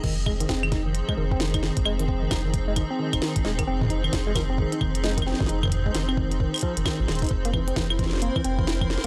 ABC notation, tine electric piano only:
X:1
M:4/4
L:1/16
Q:"Swing 16ths" 1/4=132
K:Fm
V:1 name="Tine electric piano" clef=bass
E, z A, E, C E, E E, z A, E, C E, E E, z | A, E, C E, E E, z A, E, C E, E E, z A, E, | C E, E E, z A, E, C E, E E, z A, E, C E, | E E, z A, E, C E, E E, z F, E, E, F, E, E |
z B, =E, C E, =E E, z B, E, C E, E E, z2 |]